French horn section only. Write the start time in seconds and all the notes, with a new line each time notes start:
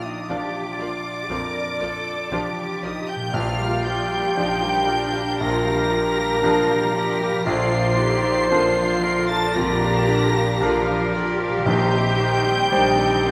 0.05 D#4
0.29 D4
2.84 D#4
3.09 G4
3.34 F4
3.85 G4
5.41 A#4
7.47 C5
9.30 A4
9.56 A#4
11.66 G4